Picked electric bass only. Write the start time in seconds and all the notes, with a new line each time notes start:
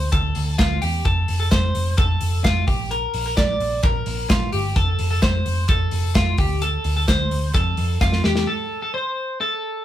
0.12 D2
0.36 D2
0.59 D2
0.83 E2
1.06 F1
1.29 F1
1.52 F1
1.75 F1
1.98 F1
2.21 F1
2.45 F1
2.68 A#1
3.15 A#1
3.37 A#1
3.60 A#1
3.84 A#1
4.07 A#1
4.30 A#1
4.53 G1
4.76 F1
4.99 F1
5.23 F1
5.46 F1
5.69 F1
5.92 F1
6.15 F1
6.38 D2
6.85 D2
7.08 D2
7.31 D2
7.54 F2
7.78 F2
8.01 F2
8.25 E2